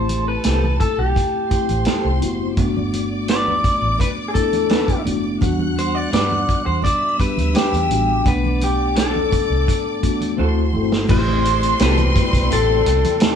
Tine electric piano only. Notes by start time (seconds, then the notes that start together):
Already playing: A3 C4 E4 G4
1.49 A3 C4 E4 G4
2.20 B3 C4 E4 F#4
2.56 A3 B3 D4 F#4
4.33 A3 B3 D4 E4
5.05 A3 B3 D4 F#4
5.40 G3 B3 D4 F#4
7.17 G3 B3 D4 G4
7.88 G3 B3 D4 F#4
8.24 A3 B3 D4 F#5
10.01 A3 B3 D4 F#4
10.37 A3 C4 E4 F#4
10.73 A3 C4 E4 A4
11.08 A3 C4 E4 F#4
11.18 G4
11.79 B3 C4 E4 F#4